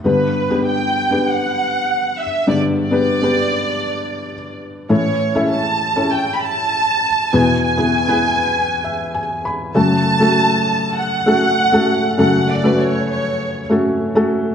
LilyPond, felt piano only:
<<
  \new Staff \with { instrumentName = "Felt piano" } { \time 4/4 \key g \lydian \tempo 4 = 99 << { r1 | r1 | r1 | r2 r8 e''8 gis''8 b''8 |
\key fis \minor r1 | r1 | } \\ { <b d' g' b'>8. <b d' g' b'>4 <b d' g' b'>4.~ <b d' g' b'>16 r8 | <b d' g' d''>8. <b d' g' b'>8 <b d' g' b'>4.~ <b d' g' b'>16 r4 | <cis' e' a' cis''>8. <cis' e' a' e''>4 <cis' e' a' cis''>4.~ <cis' e' a' cis''>16 r8 | <b e' gis' b'>8. <b e' gis' b'>8 <b e' gis' b'>4.~ <b e' gis' b'>16 r4 |
<a cis' fis' a'>8. <a cis' fis' a'>4. r16 <a cis' fis' a'>8. <a cis' fis' a'>8. | <a cis' fis' a'>8. <a cis' fis' b'>4. r16 <a cis' fis' a'>8. <a cis' fis' a'>8. | } >> }
  \new Staff \with { instrumentName = "Felt piano" } { \clef bass \time 4/4 \key g \lydian <g, d>1 | <g, d>1 | <a, e>1 | <e, b,>1 |
\key fis \minor <fis, cis>1 | <fis, cis>1 | }
>>